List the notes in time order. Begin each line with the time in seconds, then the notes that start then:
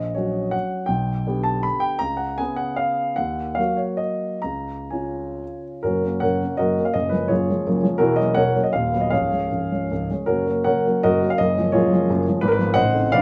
Already playing: A#1 D#5
0.15 F#3 C#4 F#4 C#5
0.51 F#5
0.86 B1 G5
1.27 D3 B3 G4
1.44 A5
1.63 B5
1.80 G5
1.99 C#2 A#5
2.17 F#5
2.38 C#3 B3 G#4 G#5
2.56 F#5
2.76 F5
3.16 D#2 F#5
3.55 F#3 A#3 F#4 F5
3.77 C#5
3.97 D#5
4.42 C#2 A#5
4.90 C#3 C#4 F4 G#5
5.83 F#1 F#2 C#4 F#4 A#4
6.03 C#3 A#3 C#4
6.20 F#1 F#2 A#4 C#5 F#5
6.42 C#3 A#3 C#4
6.57 F#1 F#2 F#4 A#4 D#5
6.78 C#3 A#3 C#4
6.85 F5
6.94 F#1 F#2 D#5
7.09 F3 G#3 C#4 B4
7.28 F#1 F#2 F4 G#4 C#5
7.50 F3 G#3 C#4
7.67 F#1 F#2
7.83 F3 G#3 C#4
7.98 E1 E2 E4 F#4 A#4
8.16 F#3 A#3 C#4 D#5
8.35 E1 E2 A#4 C#5 F#5
8.55 F#3 A#3 C#4
8.63 D#5
8.73 D#1 D#2 F5
8.93 F#3 B3
9.01 D#5
9.10 C#1 C#2 G#4 C#5 F5
9.31 G#3 C#4
9.51 C#1 C#2
9.72 G#3 C#4
9.91 C#1 C#2
10.10 G#3 C#4
10.26 F#1 F#2 C#4 F#4 A#4
10.46 F#3 A#3 C#4
10.64 F#1 F#2 A#4 C#5 F#5
10.86 F#3 A#3 C#4
11.03 F#1 F#2 F#4 A#4 D#5
11.22 F#3 A#3 C#4
11.30 F5
11.38 F#1 F#2 D#5
11.58 F3 G#3 C#4
11.72 F#1 F#2 F4 G#4 C#5
11.92 F3 G#3 C#4
12.10 F#1 F#2
12.28 F3 G#3 C#4
12.41 G#1 G#2 B4
12.48 A#4 B4
12.59 F3 B3 F4
12.74 A0 A1 C5 D#5 F#5
12.94 A3 C4 D#4
13.12 A#0 A#1 B4 D5 F5